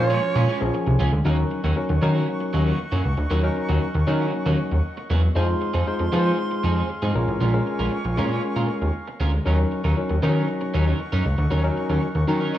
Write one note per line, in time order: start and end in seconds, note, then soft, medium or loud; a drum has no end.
0.00 0.16 A#2 loud
0.00 0.40 F3 medium
0.00 0.41 A#3 medium
0.00 0.41 C#4 medium
0.00 0.44 F4 medium
0.00 1.09 A#4 medium
0.00 0.71 C#5 loud
0.00 1.09 F5 medium
0.00 1.09 G#5 medium
0.00 1.09 C#6 medium
0.10 0.22 G#3 medium
0.10 0.22 C#4 medium
0.10 0.22 F4 medium
0.10 0.22 G#4 medium
0.23 muted clean electric guitar stroke soft
0.36 0.45 A#2 medium
0.36 0.47 G#3 medium
0.36 0.47 C#4 medium
0.36 0.48 F4 medium
0.36 0.48 G#4 medium
0.48 0.63 G#3 medium
0.48 0.61 C#4 medium
0.48 0.60 F4 medium
0.48 0.60 G#4 medium
0.61 0.71 A#1 medium
0.61 1.04 F3 loud
0.61 1.04 A#3 medium
0.61 1.05 C#4 medium
0.61 1.05 G#4 loud
0.61 muted clean electric guitar stroke soft
0.74 muted clean electric guitar stroke soft
0.87 0.96 C2 medium
0.87 muted clean electric guitar stroke soft
0.99 1.09 C#2 medium
0.99 1.18 G#3 medium
0.99 1.12 C#4 medium
0.99 1.12 F4 medium
0.99 1.11 G#4 medium
1.12 1.22 D2 medium
1.12 muted clean electric guitar stroke soft
1.25 1.44 D#2 loud
1.25 1.60 F#3 medium
1.25 1.43 F#3 medium
1.25 1.38 A#3 medium
1.25 1.60 C#4 medium
1.25 1.37 C#4 medium
1.25 1.60 D#4 medium
1.25 1.37 F#4 medium
1.25 1.60 A#4 medium
1.25 5.32 A#4 medium
1.25 7.11 D#5 medium
1.25 5.32 F#5 medium
1.25 5.32 C#6 medium
1.38 muted clean electric guitar stroke soft
1.51 muted clean electric guitar stroke soft
1.64 1.73 D#2 loud
1.64 1.75 F#3 medium
1.64 1.76 A#3 medium
1.64 1.76 C#4 medium
1.64 1.76 F#4 medium
1.76 1.94 F#3 medium
1.76 1.94 C#4 medium
1.76 1.94 D#4 medium
1.76 1.94 A#4 medium
1.76 muted clean electric guitar stroke soft
1.89 1.99 D#2 medium
1.89 muted clean electric guitar stroke soft
2.02 2.21 D#3 loud
2.02 2.71 F#3 medium
2.02 2.14 F#3 medium
2.02 2.14 A#3 medium
2.02 2.72 C#4 medium
2.02 2.14 C#4 loud
2.02 2.72 D#4 medium
2.02 2.13 F#4 medium
2.02 2.72 A#4 loud
2.15 2.27 F#3 soft
2.15 2.27 A#3 medium
2.15 2.27 C#4 medium
2.15 2.27 F#4 medium
2.28 muted clean electric guitar stroke soft
2.41 muted clean electric guitar stroke soft
2.53 2.72 D#2 medium
2.53 2.66 F#3 medium
2.53 2.66 A#3 medium
2.53 2.65 C#4 medium
2.53 2.65 F#4 medium
2.66 2.78 F#3 medium
2.66 2.78 A#3 medium
2.66 2.78 C#4 medium
2.66 2.79 F#4 medium
2.79 muted clean electric guitar stroke soft
2.92 3.02 F#2 medium
2.92 3.03 F#3 medium
2.92 3.04 A#3 medium
2.92 3.04 C#4 medium
2.92 3.04 F#4 medium
3.05 3.14 C#2 medium
3.05 muted clean electric guitar stroke soft
3.18 3.27 D2 medium
3.18 muted clean electric guitar stroke soft
3.30 3.49 D#2 loud
3.30 3.49 F#3 medium
3.30 3.39 F#3 medium
3.30 3.43 A#3 medium
3.30 3.39 C#4 medium
3.30 3.42 C#4 medium
3.30 3.39 D#4 medium
3.30 3.42 F#4 medium
3.30 3.40 A#4 medium
3.43 3.87 F#3 medium
3.43 3.87 C#4 medium
3.43 3.87 D#4 medium
3.43 3.87 A#4 loud
3.43 muted clean electric guitar stroke soft
3.56 muted clean electric guitar stroke soft
3.69 3.78 D#2 medium
3.69 3.80 F#3 medium
3.69 3.81 A#3 medium
3.69 3.81 C#4 medium
3.69 3.81 F#4 medium
3.82 muted clean electric guitar stroke soft
3.95 4.04 D#2 medium
3.95 muted clean electric guitar stroke medium
4.07 4.26 D#3 medium
4.07 4.77 F#3 medium
4.07 4.20 F#3 medium
4.07 4.20 A#3 medium
4.07 4.77 C#4 medium
4.07 4.19 C#4 medium
4.07 4.77 D#4 medium
4.07 4.19 F#4 medium
4.07 4.77 A#4 medium
4.20 4.32 F#3 medium
4.20 4.32 A#3 medium
4.20 4.32 C#4 medium
4.20 4.32 F#4 medium
4.33 muted clean electric guitar stroke soft
4.46 4.55 D#2 medium
4.46 4.58 F#3 medium
4.46 4.58 A#3 medium
4.46 4.58 C#4 medium
4.46 4.58 F#4 medium
4.59 muted clean electric guitar stroke soft
4.72 4.81 D#2 medium
4.72 muted clean electric guitar stroke soft
4.97 muted clean electric guitar stroke soft
5.10 5.29 E2 medium
5.10 5.28 F#3 medium
5.10 5.23 A#3 medium
5.10 5.22 C#4 medium
5.10 5.22 F#4 medium
5.23 muted clean electric guitar stroke soft
5.35 5.55 F2 loud
5.35 5.54 F3 medium
5.35 5.70 G#3 medium
5.35 5.48 C4 medium
5.35 5.70 D#4 medium
5.35 5.48 D#4 medium
5.35 5.70 F4 medium
5.35 7.14 G#4 medium
5.35 5.47 G#4 medium
5.35 5.71 C5 medium
5.35 9.29 F5 medium
5.35 7.14 C6 medium
5.48 muted clean electric guitar stroke soft
5.61 muted clean electric guitar stroke soft
5.74 5.84 F2 loud
5.74 5.86 F3 soft
5.74 5.86 C4 medium
5.74 5.86 D#4 medium
5.74 5.86 G#4 medium
5.87 6.04 G#3 medium
5.87 6.04 D#4 medium
5.87 6.04 F4 medium
5.87 6.05 C5 medium
5.87 muted clean electric guitar stroke soft
5.99 6.09 F2 medium
5.99 muted clean electric guitar stroke medium
6.12 6.25 F3 medium
6.12 6.32 F3 loud
6.12 6.82 G#3 medium
6.12 6.25 C4 loud
6.12 6.82 D#4 medium
6.12 6.24 D#4 loud
6.12 6.82 F4 medium
6.12 6.24 G#4 loud
6.12 6.19 B4 medium
6.19 6.85 C5 loud
6.25 6.37 F3 medium
6.25 6.37 C4 medium
6.25 6.38 D#4 medium
6.25 6.38 G#4 medium
6.38 muted clean electric guitar stroke soft
6.51 muted clean electric guitar stroke soft
6.63 6.83 F2 loud
6.63 6.76 F3 medium
6.63 6.76 C4 medium
6.63 6.76 D#4 medium
6.63 6.75 G#4 medium
6.76 6.88 F3 soft
6.76 6.89 C4 soft
6.76 6.89 D#4 medium
6.76 6.89 G#4 medium
6.90 muted clean electric guitar stroke soft
7.02 7.12 G#2 medium
7.02 7.15 F3 medium
7.02 7.15 C4 medium
7.02 7.15 D#4 medium
7.02 7.16 G#4 medium
7.14 7.25 A#1 loud
7.14 7.46 G#3 medium
7.14 7.46 C#4 medium
7.14 7.46 F4 medium
7.14 12.58 A#4 medium
7.14 7.46 A#4 loud
7.14 9.29 G#5 medium
7.14 9.29 C#6 medium
7.14 muted clean electric guitar stroke medium
7.28 7.37 A1 medium
7.28 muted clean electric guitar stroke soft
7.41 7.60 A#1 loud
7.41 7.59 G#3 medium
7.41 7.53 C#4 medium
7.41 7.53 F4 medium
7.41 7.52 A#4 medium
7.53 7.97 G#3 medium
7.53 7.97 C#4 medium
7.53 7.97 F4 medium
7.53 7.97 A#4 loud
7.53 muted clean electric guitar stroke soft
7.66 muted clean electric guitar stroke soft
7.79 7.89 A#1 loud
7.79 7.91 G#3 medium
7.79 7.91 C#4 soft
7.79 7.91 F4 medium
7.79 7.92 A#4 medium
7.92 muted clean electric guitar stroke soft
8.05 8.19 A#1 loud
8.05 muted clean electric guitar stroke medium
8.17 8.37 A#2 medium
8.17 8.87 G#3 medium
8.17 8.31 G#3 medium
8.17 8.87 C#4 medium
8.17 8.30 C#4 medium
8.17 8.87 F4 medium
8.17 8.30 F4 medium
8.17 8.87 A#4 medium
8.17 8.29 A#4 loud
8.31 8.42 G#3 medium
8.31 8.43 C#4 medium
8.31 8.43 F4 medium
8.31 8.43 A#4 medium
8.44 muted clean electric guitar stroke soft
8.56 8.66 A#2 medium
8.56 8.68 G#3 medium
8.56 8.68 C#4 medium
8.56 8.69 F4 medium
8.56 8.69 A#4 medium
8.69 muted clean electric guitar stroke soft
8.82 8.91 D#2 medium
8.82 muted clean electric guitar stroke soft
9.08 muted clean electric guitar stroke soft
9.20 9.39 D2 medium
9.20 9.38 G#3 medium
9.20 9.33 C#4 medium
9.20 9.33 F4 medium
9.20 9.32 A#4 loud
9.33 muted clean electric guitar stroke soft
9.45 9.65 D#2 loud
9.45 9.80 F#3 medium
9.45 9.64 F#3 medium
9.45 9.80 C#4 medium
9.45 9.58 C#4 medium
9.45 9.81 D#4 medium
9.45 9.58 D#4 medium
9.45 9.81 A#4 medium
9.45 9.58 A#4 medium
9.45 12.58 D#5 medium
9.45 12.58 F#5 medium
9.45 12.58 C#6 medium
9.59 muted clean electric guitar stroke soft
9.71 muted clean electric guitar stroke soft
9.84 9.94 D#2 loud
9.84 9.96 F#3 soft
9.84 9.96 C#4 medium
9.84 9.96 D#4 medium
9.84 9.96 A#4 medium
9.97 10.14 F#3 medium
9.97 10.14 C#4 medium
9.97 10.15 D#4 medium
9.97 10.15 A#4 medium
9.97 muted clean electric guitar stroke soft
10.09 10.19 D#2 medium
10.09 muted clean electric guitar stroke soft
10.22 10.42 D#3 loud
10.22 10.29 F3 medium
10.22 10.36 F#3 medium
10.22 10.92 C#4 medium
10.22 10.35 C#4 medium
10.22 10.92 D#4 medium
10.22 10.35 D#4 medium
10.22 10.92 A#4 loud
10.22 10.34 A#4 medium
10.28 10.95 F#3 loud
10.36 10.47 F#3 medium
10.36 10.47 C#4 medium
10.36 10.48 D#4 medium
10.36 10.48 A#4 medium
10.48 muted clean electric guitar stroke soft
10.61 muted clean electric guitar stroke soft
10.74 10.93 D#2 medium
10.74 10.87 F#3 medium
10.74 10.86 C#4 medium
10.74 10.86 D#4 medium
10.74 10.85 A#4 medium
10.87 10.98 F#3 soft
10.87 10.99 C#4 soft
10.87 10.99 D#4 medium
10.87 10.99 A#4 medium
11.00 muted clean electric guitar stroke soft
11.12 11.22 F#2 medium
11.12 11.24 F#3 medium
11.12 11.24 C#4 medium
11.12 11.25 D#4 medium
11.12 11.25 A#4 medium
11.25 11.35 C#2 medium
11.25 muted clean electric guitar stroke medium
11.38 11.48 D2 loud
11.38 muted clean electric guitar stroke soft
11.51 11.70 D#2 loud
11.51 11.60 F#3 medium
11.51 11.69 F#3 medium
11.51 11.60 C#4 medium
11.51 11.63 C#4 medium
11.51 11.60 D#4 medium
11.51 11.63 D#4 medium
11.51 11.60 A#4 medium
11.51 11.63 A#4 medium
11.63 12.07 F#3 loud
11.63 12.07 C#4 medium
11.63 12.07 D#4 medium
11.63 12.07 A#4 medium
11.63 muted clean electric guitar stroke medium
11.77 muted clean electric guitar stroke soft
11.89 11.99 D#2 loud
11.89 12.01 F#3 soft
11.89 12.01 C#4 medium
11.89 12.02 D#4 medium
11.89 12.02 A#4 medium
12.02 muted clean electric guitar stroke soft
12.15 12.25 D#2 medium
12.15 muted clean electric guitar stroke soft
12.28 12.47 D#3 medium
12.28 12.58 F#3 medium
12.28 12.40 F#3 medium
12.28 12.58 C#4 medium
12.28 12.40 C#4 medium
12.28 12.58 D#4 medium
12.28 12.39 D#4 medium
12.28 12.58 A#4 loud
12.28 12.39 A#4 medium
12.40 12.52 F#3 medium
12.40 12.52 C#4 medium
12.40 12.53 D#4 medium
12.40 12.53 A#4 medium
12.53 12.58 F#3 medium
12.53 12.58 C#4 medium
12.53 12.58 D#4 medium
12.53 12.58 A#4 loud